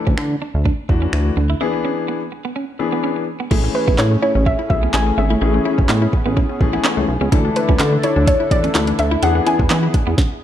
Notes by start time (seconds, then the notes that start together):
Already playing: E3 A3 D4 A4
0.07 D2 C#4, kick
0.18 D3, finger snap
0.42 D4
0.54 D2
0.65 D4, kick
0.89 E2 E3 A3 D4 F#4, muted clean electric guitar stroke, kick
1.02 C#4
1.13 D2, finger snap, muted clean electric guitar stroke
1.37 D2 D4
1.50 E4
1.61 E3 B3 D4 E4 G#4
1.73 muted clean electric guitar stroke
1.85 C#4
2.08 B3
2.32 muted clean electric guitar stroke
2.45 B3
2.56 C#4
2.79 E3 B3 D4 G#4, muted clean electric guitar stroke
2.92 B3
3.04 C#4
3.16 muted clean electric guitar stroke
3.40 B3
3.51 A1 E3 A3 C#4 E4 G#4, kick, crash
3.64 C#4
3.75 A3 B4, muted clean electric guitar stroke
3.88 A1 B3 E4, kick
3.98 A2 C#4 C#5, snare, clap
4.11 A3
4.22 C#4 E4 C#5
4.35 A1 C#4
4.46 A3 C#4 E5, kick
4.59 E4
4.70 B1 E3 A3 C#4 G#4 E5, muted clean electric guitar stroke, kick
4.83 B3
4.94 A1 E4 G#5, snare, clap
5.06 C#4
5.18 G#1 A3 C#4 E5
5.30 A3 E4
5.41 A1 E3 A3 B3 C#4 G#4
5.54 A3, muted clean electric guitar stroke
5.65 C#4 E4
5.78 A1 C#4, kick
5.89 A2 A3 B3, snare, clap
6.02 E4
6.13 C#4, muted clean electric guitar stroke, kick
6.25 A1 A3 B3
6.37 C#4 E4, kick
6.49 C#4
6.61 A1 E3 A3 C#4 G#4, muted clean electric guitar stroke, kick
6.73 B3 E4
6.84 C#4, snare, clap
6.97 C#2 A3, muted clean electric guitar stroke
7.08 B1
7.21 C#2 B3 C#4
7.32 D2 D3 E3 A3 D4 E4 A4, kick, closed hi-hat
7.45 D4
7.56 A3 B4, muted clean electric guitar stroke, closed hi-hat
7.69 D2 C#4 E4, kick
7.80 D3 D4, snare, clap, closed hi-hat
7.92 A3
8.03 D4 E4 C#5, closed hi-hat
8.16 D2 D4
8.27 A3 D4 C#5, kick, closed hi-hat
8.40 E4
8.51 E2 E3 A3 D4 A4 D5, muted clean electric guitar stroke, kick, closed hi-hat
8.64 C#4, closed hi-hat
8.75 D2 E4, muted clean electric guitar stroke, snare, clap, closed hi-hat
8.87 D4, closed hi-hat
8.99 D2 A3 D4 E5, closed hi-hat
9.11 E4
9.22 E2 E3 B3 D4 E4 G#4 F#5, closed hi-hat
9.35 B3, muted clean electric guitar stroke
9.46 C#4 E4 G#5, closed hi-hat
9.59 E2 D4, kick
9.70 E3 B3, snare, clap, closed hi-hat
9.83 E4
9.94 D4, muted clean electric guitar stroke, kick, closed hi-hat
10.07 E2 B3
10.18 kick, snare